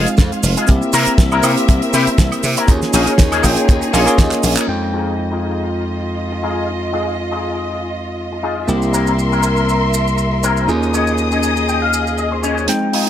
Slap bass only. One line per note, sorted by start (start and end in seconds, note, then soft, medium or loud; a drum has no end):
0.07 muted slap bass stroke soft
0.18 0.30 F2 loud
0.43 0.55 F1 medium
0.69 0.80 C2 loud
0.93 1.05 C3 medium
1.07 muted slap bass stroke soft
1.18 1.40 C2 medium
1.43 1.55 C3 medium
1.69 1.80 C2 loud
1.93 2.05 C3 medium
2.07 muted slap bass stroke soft
2.18 2.30 C2 loud
2.44 2.55 C3 loud
2.68 2.80 D#2 loud
2.93 3.05 A#1 medium
3.07 muted slap bass stroke soft
3.20 3.40 D#2 medium
3.44 3.55 A#1 medium
3.69 3.80 D#2 medium
3.93 4.05 A#1 medium
4.19 4.30 D#2 loud
4.43 4.55 A#1 medium
4.68 8.66 F2 medium
8.68 10.66 C2 medium
10.68 12.66 D#2 medium